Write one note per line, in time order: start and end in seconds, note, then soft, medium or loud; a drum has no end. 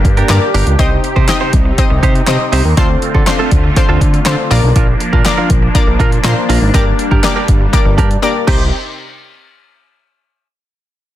0.00 0.20 A#3 medium
0.00 0.77 A#3 medium
0.00 0.20 D4 medium
0.00 0.77 D4 medium
0.00 0.20 G4 medium
0.00 2.74 G4 loud
0.00 0.20 A#4 medium
0.00 0.20 F5 loud
0.05 0.23 G2 loud
0.05 muted clean electric guitar stroke soft
0.05 kick loud
0.05 closed hi-hat medium
0.17 0.33 D4 medium
0.17 0.33 G4 medium
0.17 0.33 A#4 medium
0.17 closed hi-hat soft
0.29 0.39 G2 loud
0.29 0.69 A#3 medium
0.29 0.69 D4 medium
0.29 0.70 G4 medium
0.29 0.70 A#4 medium
0.29 0.70 D5 loud
0.29 snare medium
0.29 clap loud
0.29 closed hi-hat loud
0.42 muted clean electric guitar stroke medium
0.54 0.64 G1 loud
0.54 0.74 D4 medium
0.54 0.66 G4 medium
0.54 0.66 A#4 medium
0.54 open hi-hat medium
0.67 0.76 C#2 medium
0.67 muted clean electric guitar stroke medium
0.67 closed hi-hat medium
0.79 0.98 C2 loud
0.79 2.75 C3 medium
0.79 1.19 C4 loud
0.79 4.47 C4 medium
0.79 1.19 D#4 loud
0.79 0.99 D#4 medium
0.79 2.75 D#4 medium
0.79 1.19 G4 loud
0.79 0.91 G4 medium
0.79 1.19 C5 medium
0.79 0.90 C5 loud
0.79 1.19 D#5 loud
0.79 kick loud
0.79 closed hi-hat loud
0.91 muted clean electric guitar stroke soft
1.04 muted clean electric guitar stroke soft
1.04 closed hi-hat medium
1.16 1.26 C3 loud
1.16 1.27 D#4 soft
1.16 1.28 G4 medium
1.16 1.28 C5 medium
1.16 kick medium
1.28 1.69 C4 loud
1.28 1.69 D#4 medium
1.28 1.69 G4 loud
1.28 1.69 C5 loud
1.28 1.69 D#5 loud
1.28 snare loud
1.28 clap loud
1.28 closed hi-hat loud
1.41 1.52 D#4 medium
1.41 1.52 G4 medium
1.41 1.53 C5 medium
1.53 1.72 C2 medium
1.53 muted clean electric guitar stroke soft
1.53 kick medium
1.53 closed hi-hat medium
1.65 muted clean electric guitar stroke soft
1.78 2.18 C4 medium
1.78 2.18 D#4 medium
1.78 2.18 G4 medium
1.78 2.18 C5 medium
1.78 2.18 D#5 loud
1.78 muted clean electric guitar stroke soft
1.78 kick loud
1.78 closed hi-hat loud
1.90 2.00 C2 loud
1.90 muted clean electric guitar stroke medium
2.03 2.21 C3 loud
2.03 2.23 D#4 medium
2.03 2.15 G4 medium
2.03 2.14 C5 medium
2.03 kick medium
2.03 closed hi-hat medium
2.15 muted clean electric guitar stroke medium
2.15 closed hi-hat medium
2.27 2.37 C3 loud
2.27 2.68 C4 loud
2.27 2.68 D#4 medium
2.27 2.68 G4 medium
2.27 2.68 C5 medium
2.27 2.68 D#5 loud
2.27 snare medium
2.27 clap loud
2.27 closed hi-hat medium
2.40 muted clean electric guitar stroke soft
2.52 2.62 C2 loud
2.52 2.72 D#4 medium
2.52 2.64 G4 medium
2.52 2.64 C5 medium
2.52 open hi-hat medium
2.65 2.74 D#2 medium
2.65 muted clean electric guitar stroke soft
2.77 2.96 D2 loud
2.77 4.49 A3 medium
2.77 2.97 C4 loud
2.77 3.17 C4 loud
2.77 3.17 D4 loud
2.77 3.17 F4 medium
2.77 4.49 F4 loud
2.77 2.89 F4 loud
2.77 3.17 A4 medium
2.77 2.88 A4 loud
2.77 3.17 C5 loud
2.77 kick loud
2.77 closed hi-hat loud
2.90 muted clean electric guitar stroke soft
3.02 muted clean electric guitar stroke soft
3.02 closed hi-hat medium
3.14 3.24 D3 medium
3.14 3.26 C4 medium
3.14 3.26 F4 medium
3.14 3.26 A4 medium
3.14 kick medium
3.27 3.67 C4 loud
3.27 3.67 D4 medium
3.27 3.67 F4 medium
3.27 3.67 A4 medium
3.27 3.67 C5 loud
3.27 muted clean electric guitar stroke soft
3.27 snare loud
3.27 clap loud
3.27 closed hi-hat loud
3.39 3.51 C4 medium
3.39 3.51 F4 medium
3.39 3.51 A4 medium
3.51 3.70 D2 loud
3.51 kick medium
3.51 closed hi-hat medium
3.64 muted clean electric guitar stroke medium
3.76 4.17 C4 medium
3.76 4.17 D4 medium
3.76 4.17 F4 medium
3.76 4.17 A4 medium
3.76 4.17 C5 loud
3.76 muted clean electric guitar stroke medium
3.76 kick loud
3.76 closed hi-hat loud
3.89 3.98 D2 loud
3.89 4.00 C4 medium
3.89 4.00 F4 medium
3.89 4.01 A4 medium
4.01 4.20 D3 medium
4.01 muted clean electric guitar stroke soft
4.01 kick medium
4.01 closed hi-hat medium
4.14 muted clean electric guitar stroke medium
4.14 closed hi-hat soft
4.26 4.35 D3 loud
4.26 4.51 C4 loud
4.26 4.50 D4 medium
4.26 4.50 F4 medium
4.26 4.51 A4 medium
4.26 4.51 C5 loud
4.26 snare medium
4.26 clap loud
4.26 closed hi-hat medium
4.38 muted clean electric guitar stroke medium
4.51 4.60 A#1 loud
4.51 6.72 F3 medium
4.51 5.11 A#3 loud
4.51 8.44 A#3 medium
4.51 4.71 D4 medium
4.51 5.11 D4 medium
4.51 8.44 D4 medium
4.51 5.11 F4 medium
4.51 4.63 F4 loud
4.51 5.11 A#4 medium
4.51 4.62 A#4 loud
4.51 5.11 D5 loud
4.51 open hi-hat medium
4.63 4.73 B1 medium
4.63 muted clean electric guitar stroke soft
4.75 4.94 A#1 loud
4.75 4.95 D4 medium
4.75 4.88 F4 loud
4.75 4.87 A#4 loud
4.75 kick loud
4.75 closed hi-hat loud
4.88 muted clean electric guitar stroke medium
5.00 muted clean electric guitar stroke medium
5.00 closed hi-hat medium
5.13 5.22 A#2 loud
5.13 5.24 D4 medium
5.13 5.25 F4 medium
5.13 5.25 A#4 medium
5.13 kick medium
5.25 5.65 A#3 loud
5.25 5.65 D4 medium
5.25 5.65 F4 loud
5.25 5.65 A#4 medium
5.25 5.65 D5 loud
5.25 muted clean electric guitar stroke soft
5.25 snare loud
5.25 clap loud
5.25 closed hi-hat loud
5.37 5.49 D4 medium
5.37 5.49 F4 medium
5.37 5.50 A#4 medium
5.50 5.69 A#1 medium
5.50 muted clean electric guitar stroke soft
5.50 kick medium
5.50 closed hi-hat medium
5.62 muted clean electric guitar stroke medium
5.75 6.15 A#3 loud
5.75 6.15 D4 medium
5.75 6.15 F4 medium
5.75 6.15 A#4 medium
5.75 6.15 D5 loud
5.75 muted clean electric guitar stroke soft
5.75 kick loud
5.75 closed hi-hat loud
5.87 5.97 A#1 loud
5.87 muted clean electric guitar stroke medium
6.00 6.18 A#2 loud
6.00 6.19 D4 medium
6.00 6.12 F4 medium
6.00 6.11 A#4 medium
6.00 kick medium
6.00 closed hi-hat medium
6.12 muted clean electric guitar stroke soft
6.12 closed hi-hat soft
6.24 6.34 A#2 loud
6.24 6.64 A#3 loud
6.24 6.64 D4 medium
6.24 6.64 F4 medium
6.24 6.65 A#4 medium
6.24 6.65 C5 loud
6.24 snare loud
6.24 clap loud
6.24 closed hi-hat loud
6.37 muted clean electric guitar stroke soft
6.49 6.59 A#1 loud
6.49 6.69 D4 medium
6.49 6.61 F4 medium
6.49 6.60 A#4 loud
6.49 open hi-hat medium
6.61 6.71 G#1 medium
6.61 muted clean electric guitar stroke medium
6.74 6.93 G1 loud
6.74 7.14 A#3 loud
6.74 6.94 D4 medium
6.74 7.14 D4 loud
6.74 7.14 G4 medium
6.74 6.86 G4 loud
6.74 7.14 A#4 loud
6.74 6.85 A#4 loud
6.74 7.14 D5 loud
6.74 kick loud
6.74 closed hi-hat loud
6.86 muted clean electric guitar stroke soft
6.99 muted clean electric guitar stroke soft
6.99 closed hi-hat medium
7.11 7.21 G2 medium
7.11 7.22 D4 medium
7.11 7.23 G4 medium
7.11 7.23 A#4 medium
7.11 kick medium
7.23 7.64 A#3 loud
7.23 7.64 D4 medium
7.23 7.64 G4 medium
7.23 7.64 A#4 medium
7.23 7.64 D5 loud
7.23 snare loud
7.23 clap loud
7.23 closed hi-hat loud
7.36 7.47 D4 medium
7.36 7.48 G4 medium
7.36 7.48 A#4 loud
7.48 7.67 G1 medium
7.48 muted clean electric guitar stroke soft
7.48 kick medium
7.48 closed hi-hat medium
7.61 muted clean electric guitar stroke soft
7.73 8.13 A#3 medium
7.73 8.13 D4 medium
7.73 8.13 G4 medium
7.73 8.13 A#4 medium
7.73 8.13 D5 loud
7.73 muted clean electric guitar stroke medium
7.73 kick loud
7.73 closed hi-hat loud
7.85 8.00 G1 loud
7.85 muted clean electric guitar stroke soft
7.98 8.17 G2 loud
7.98 8.18 D4 medium
7.98 8.10 G4 medium
7.98 8.09 A#4 medium
7.98 kick medium
7.98 closed hi-hat medium
8.10 muted clean electric guitar stroke soft
8.10 closed hi-hat soft
8.22 8.47 A#3 loud
8.22 8.47 D4 medium
8.22 8.46 G4 medium
8.22 8.48 A#4 medium
8.22 8.48 D5 loud
8.47 8.71 C2 loud
8.47 8.71 C3 medium
8.47 8.71 C4 medium
8.47 8.62 D#4 medium
8.47 8.71 D#4 medium
8.47 8.71 G4 medium
8.47 8.63 G4 loud
8.47 8.71 C5 loud
8.47 8.63 C5 medium
8.47 kick loud
8.47 crash medium